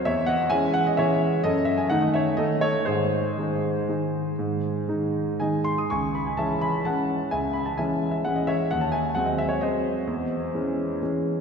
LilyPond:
<<
  \new Staff \with { instrumentName = "Grand piano" } { \time 3/4 \key cis \minor \tempo 4 = 127 <cis'' e''>8 <dis'' fis''>8 <e'' gis''>8 fis''16 dis''16 <cis'' e''>4 | <a' dis''>8 e''16 gis''16 fis''16 dis''16 <cis'' e''>8 <a' dis''>8 <a' cis''>8 | <gis' bis'>2.~ | <gis' bis'>2 <dis'' gis''>8 bis''16 dis'''16 |
<gis'' cis'''>8 b''16 gis''16 <e'' a''>8 <gis'' b''>8 <fis'' a''>4 | <e'' gis''>8 b''16 a''16 <e'' gis''>8. e''16 fis''16 dis''16 <cis'' e''>8 | fis''16 a''16 <e'' gis''>8 fis''16 dis''16 e''16 cis''16 <bis' dis''>4~ | <bis' dis''>4. r4. | }
  \new Staff \with { instrumentName = "Grand piano" } { \clef bass \time 3/4 \key cis \minor e,4 <e gis cis'>4 <e gis cis'>4 | fis,4 <dis a dis'>4 <dis a dis'>4 | gis,4 <dis gis dis'>4 <dis gis dis'>4 | gis,4 <dis gis dis'>4 <dis gis dis'>4 |
cis,4 <e gis cis'>4 <e gis cis'>4 | cis,4 <e gis cis'>4 <e gis cis'>4 | dis,4 <fis gis bis>4 <fis gis bis>4 | e,4 <e gis cis'>4 <e gis cis'>4 | }
>>